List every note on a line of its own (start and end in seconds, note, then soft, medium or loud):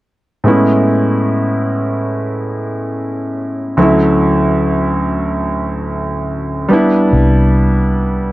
0.44 3.73 A2 medium
0.44 3.74 G#3 soft
0.44 3.74 B3 soft
0.44 3.75 C#4 soft
0.48 3.75 E4 medium
3.77 6.65 D2 medium
3.77 6.65 F#3 medium
3.77 6.66 A3 soft
3.77 6.66 C#4 soft
3.82 6.67 E4 medium
6.68 8.32 G3 medium
6.68 8.32 B3 medium
6.68 8.32 D4 soft
6.73 8.32 E4 medium
7.13 8.32 C2 medium